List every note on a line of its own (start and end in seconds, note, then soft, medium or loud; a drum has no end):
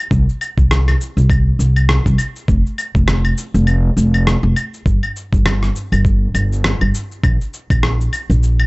0.11 0.23 C2 loud
0.11 kick loud
0.11 shaker soft
0.29 shaker soft
0.41 claves medium
0.41 shaker medium
0.57 0.94 C2 medium
0.57 kick loud
0.57 shaker soft
0.71 cross-stick loud
0.71 shaker soft
0.88 cross-stick soft
0.88 claves medium
0.88 shaker soft
1.01 shaker medium
1.17 1.53 C2 loud
1.17 shaker soft
1.30 kick loud
1.30 claves medium
1.30 shaker soft
1.59 1.97 C2 medium
1.59 shaker medium
1.76 claves medium
1.76 shaker soft
1.89 cross-stick loud
1.89 shaker soft
2.06 2.15 C2 loud
2.06 kick medium
2.06 shaker soft
2.18 claves medium
2.18 shaker medium
2.36 shaker soft
2.48 2.60 F1 medium
2.48 kick loud
2.48 shaker soft
2.66 shaker soft
2.78 claves medium
2.78 shaker medium
2.95 3.31 F1 medium
2.95 kick loud
2.95 shaker soft
3.08 cross-stick loud
3.08 shaker soft
3.25 claves medium
3.25 shaker soft
3.38 shaker medium
3.54 3.91 F1 loud
3.54 shaker soft
3.67 claves medium
3.67 shaker soft
3.97 4.35 F1 loud
3.97 shaker medium
4.14 claves medium
4.14 shaker soft
4.27 cross-stick loud
4.27 shaker soft
4.43 4.52 F1 loud
4.56 claves medium
4.56 shaker medium
4.74 shaker soft
4.86 4.98 G1 loud
4.86 kick loud
4.86 shaker soft
5.03 claves medium
5.03 shaker soft
5.16 shaker medium
5.32 5.69 G1 medium
5.32 kick loud
5.32 shaker soft
5.46 cross-stick loud
5.46 claves medium
5.46 shaker soft
5.63 cross-stick soft
5.63 shaker soft
5.76 shaker medium
5.92 6.28 G1 loud
5.92 claves medium
5.92 shaker soft
6.05 kick loud
6.05 shaker soft
6.34 6.73 G1 loud
6.34 claves medium
6.34 shaker medium
6.52 shaker soft
6.64 cross-stick medium
6.64 shaker soft
6.81 6.90 G1 medium
6.81 claves medium
6.94 shaker medium
7.11 shaker soft
7.23 7.35 A#1 loud
7.23 kick loud
7.23 claves medium
7.23 shaker soft
7.41 shaker soft
7.54 shaker medium
7.70 8.06 A#1 medium
7.70 kick loud
7.70 claves medium
7.70 shaker soft
7.83 cross-stick loud
7.83 shaker soft
8.01 shaker soft
8.13 claves medium
8.13 shaker medium
8.30 8.66 A#1 loud
8.30 shaker soft
8.43 shaker soft
8.60 claves medium